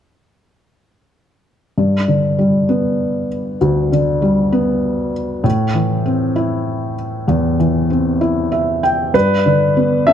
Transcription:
1.78 felt piano G2
2.08 felt piano D3
2.39 felt piano G3
2.69 felt piano B3
3.61 felt piano D2
3.92 felt piano D3
4.22 felt piano G3
4.52 felt piano B3
5.44 felt piano A2
5.74 felt piano E3
6.06 felt piano C4
6.36 felt piano E4
7.28 felt piano E2
7.60 felt piano E3
7.90 felt piano C4
8.21 felt piano E4
8.52 felt piano E5
8.83 felt piano G5
9.14 felt piano G2, grand piano B4
9.46 felt piano D3
9.77 felt piano B3
10.07 felt piano D4, grand piano E5

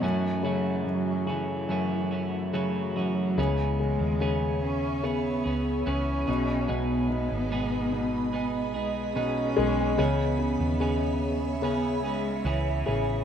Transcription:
Already playing: ambient pad F#3
0.01 grand piano F#2, clean electric guitar F#2 E3 F#3 A3 C#4 F#4, ambient pad F#2 A3 E4, cello A3
0.43 clean electric guitar F#2 E3 F#3 A3 C#4 F#4, grand piano C#3
0.84 grand piano F#2
0.89 cello F#3
1.26 grand piano C#3, clean electric guitar E3 A3 C#4 F#4
1.31 cello E3
1.69 grand piano F#2, clean electric guitar E3 A3 C#4 F#4
2.11 clean electric guitar E3 A3 C#4 F#4
2.53 clean electric guitar F#2 E3 F#3 A3 C#4 F#4, grand piano C#3, cello F#3
2.96 grand piano F#2, clean electric guitar E3 A3 C#4 F#4
3.38 fingered electric bass C#2, grand piano C#3, clean electric guitar C#3 E3 B3 C#4 G#4, cello G#3, ambient pad G#4 C#5 E5 B5
3.80 grand piano C#3
4.00 fingered electric bass D#2
4.20 clean electric guitar C#3 B3 C#4 G#4, grand piano C#3
4.63 cello C#4
5.03 grand piano C#3, clean electric guitar B3 C#4 G#4, cello B3
5.44 fingered electric bass C#2, clean electric guitar B3 C#4 G#4
5.86 fingered electric bass C#2, clean electric guitar C#3 E3 B3 C#4 G#4, cello C#4
6.27 fingered electric bass B1, grand piano B2, clean electric guitar B3 D#4 G#4, ambient pad G#4 B4 D#5
6.68 fingered electric bass B1, clean electric guitar B2 G#3 B3 D#4 G#4, grand piano B2, cello B3
7.10 grand piano B2
7.32 fingered electric bass G#1
7.51 clean electric guitar B2 G#3 B3 D#4 G#4
7.93 grand piano B2
8.33 clean electric guitar G#3 B3 D#4 G#4, cello B3
8.74 fingered electric bass B1, cello G#3, clean electric guitar B3 D#4 G#4
9.15 clean electric guitar B2 G#3 B3 D#4 G#4, grand piano B2, cello C#4
9.56 fingered electric bass B1, grand piano G#3, clean electric guitar B3 D#4 G#4
9.98 fingered electric bass C#2, clean electric guitar C#3 E3 B3 C#4 G#4, grand piano C#3, cello B3, ambient pad C#5 E5
10.39 grand piano C#3
10.60 fingered electric bass D#2
10.80 clean electric guitar C#3 B3 C#4 G#4, grand piano C#3
11.62 grand piano C#3, cello B3, clean electric guitar B3 C#4 G#4
12.03 fingered electric bass C#2, cello G#3, clean electric guitar B3 C#4 G#4
12.45 fingered electric bass C#2, clean electric guitar C#3 E3 B3 C#4 G#4, cello E3
12.86 fingered electric bass A1, grand piano C#3, clean electric guitar B3 C#4 G#4

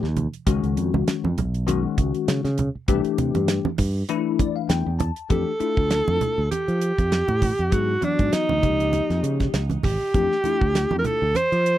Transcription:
0.03 fingered electric bass D#2, snare
0.17 closed hi-hat, high conga, low conga
0.33 closed hi-hat
0.47 fingered electric bass C#2, tine electric piano D#3 G#3 C#4 F#4, kick, closed hi-hat
0.63 fingered electric bass C#2, closed hi-hat
0.77 fingered electric bass F2, closed hi-hat
0.94 fingered electric bass C#2, high conga
1.08 muted fingered electric bass stroke, snare, closed hi-hat
1.24 fingered electric bass F2, high conga
1.38 fingered electric bass B1, closed hi-hat, low conga
1.54 closed hi-hat
1.67 tine electric piano D#3 G#3 C#4 F#4, closed hi-hat, high conga
1.98 fingered electric bass C#2, kick, closed hi-hat
2.14 closed hi-hat
2.28 fingered electric bass C#3, snare, closed hi-hat
2.44 fingered electric bass C#3, snare, closed hi-hat
2.58 closed hi-hat, high conga, low conga
2.75 muted fingered electric bass stroke
2.88 fingered electric bass C2, tine electric piano E3 A3 D4 G4, kick, closed hi-hat, low conga
3.05 muted fingered electric bass stroke, closed hi-hat
3.18 fingered electric bass C3, closed hi-hat, low conga
3.35 fingered electric bass G2, closed hi-hat, high conga
3.48 snare, closed hi-hat
3.65 high conga
3.78 fingered electric bass G2, kick, open hi-hat, low conga
4.09 tine electric piano E3 A3 D4 E4, closed hi-hat
4.39 tine electric piano D5, kick, closed hi-hat, high conga
4.56 tine electric piano F5
4.69 fingered electric bass E2, tine electric piano G5, snare, closed hi-hat
4.86 fingered electric bass E2
4.99 tine electric piano A5, closed hi-hat, high conga, low conga
5.16 closed hi-hat
5.29 fingered electric bass F2, tine electric piano E3 A3 D4 G4, alto saxophone A4, kick, closed hi-hat
5.60 tine electric piano A3 D4 E4 F4, muted fingered electric bass stroke, closed hi-hat
5.77 fingered electric bass D2, kick
5.91 snare, closed hi-hat
6.08 fingered electric bass F2, high conga
6.21 closed hi-hat, low conga
6.38 fingered electric bass D2
6.51 alto saxophone G4, closed hi-hat, high conga
6.68 fingered electric bass F3, closed hi-hat
6.81 closed hi-hat
6.98 fingered electric bass F2, kick, closed hi-hat
7.12 snare, closed hi-hat
7.28 fingered electric bass A2, closed hi-hat, high conga
7.42 kick, open hi-hat, high conga, low conga
7.58 fingered electric bass F2, closed hi-hat
7.71 fingered electric bass G#2, tine electric piano F#3 B3 E4 G#4, alto saxophone F#4, kick, closed hi-hat
8.01 tine electric piano E3 F#3 B3 F#4, alto saxophone D4, closed hi-hat, high conga
8.19 fingered electric bass G#2, kick, closed hi-hat
8.33 alto saxophone D#4, muted fingered electric bass stroke, snare, closed hi-hat
8.49 fingered electric bass D2, high conga
8.62 fingered electric bass C#2, tine electric piano F3 A#3 D#4 G4, kick, closed hi-hat, low conga
8.80 closed hi-hat
8.93 closed hi-hat, high conga
9.10 fingered electric bass F2, snare, closed hi-hat
9.23 fingered electric bass C#3, closed hi-hat
9.40 kick, snare, closed hi-hat, low conga
9.54 fingered electric bass C#2, snare, closed hi-hat
9.70 closed hi-hat, high conga
9.83 fingered electric bass G#1, alto saxophone G4, kick, open hi-hat, high conga, low conga
10.14 fingered electric bass F2, tine electric piano E3 A3 D4 G4, kick, closed hi-hat
10.32 snare
10.44 tine electric piano A3 D4 E4 F4, muted fingered electric bass stroke, closed hi-hat, high conga
10.61 fingered electric bass D2, kick
10.75 snare, closed hi-hat
10.91 fingered electric bass F2, high conga
10.99 alto saxophone A#4
11.04 alto saxophone A4, closed hi-hat, low conga
11.22 fingered electric bass D2
11.35 alto saxophone C5, closed hi-hat, high conga
11.52 fingered electric bass F3, closed hi-hat
11.66 closed hi-hat

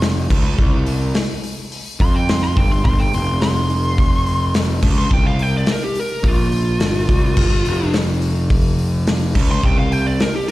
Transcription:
Already playing: picked electric bass F1
0.02 snare, open hi-hat
0.30 picked electric bass C#2, kick, crash
0.59 picked electric bass C2, kick
0.86 open hi-hat
1.15 snare, open hi-hat
1.44 open hi-hat
1.72 open hi-hat
2.00 picked electric bass F2, lead electric guitar C6, kick, open hi-hat
2.16 lead electric guitar G5
2.29 lead electric guitar C6, snare, open hi-hat
2.44 lead electric guitar C6
2.57 picked electric bass G1, lead electric guitar G5, kick, open hi-hat
2.71 lead electric guitar C6
2.85 picked electric bass G1, lead electric guitar C6, kick, open hi-hat
3.00 lead electric guitar G5
3.13 picked electric bass F1, lead electric guitar C6, open hi-hat
3.42 lead electric guitar C6, snare, open hi-hat
3.70 open hi-hat
3.98 kick, open hi-hat
4.26 open hi-hat
4.54 snare, open hi-hat
4.82 picked electric bass C#2, kick, crash
4.98 lead electric guitar C6
5.11 picked electric bass C2, lead electric guitar G5, kick
5.27 lead electric guitar F5
5.39 lead electric guitar G5, open hi-hat
5.57 lead electric guitar D5
5.67 snare, open hi-hat
5.71 lead electric guitar A#4
5.84 lead electric guitar G4
5.95 open hi-hat
6.00 lead electric guitar A#4
6.23 picked electric bass A#1, kick, open hi-hat
6.28 lead electric guitar F4
6.52 open hi-hat
6.80 picked electric bass G1, snare, open hi-hat
7.09 picked electric bass C2, kick, open hi-hat
7.37 picked electric bass G1, kick, crash
7.65 picked electric bass F1, open hi-hat
7.94 snare, open hi-hat
8.22 open hi-hat
8.50 kick, open hi-hat
8.78 open hi-hat
9.07 snare, open hi-hat
9.35 picked electric bass C#2, kick, crash
9.51 lead electric guitar C6
9.63 picked electric bass C2, lead electric guitar G5, kick
9.79 lead electric guitar F5
9.92 lead electric guitar G5, open hi-hat
10.07 lead electric guitar D5
10.20 lead electric guitar A#4, snare, open hi-hat
10.36 lead electric guitar G4

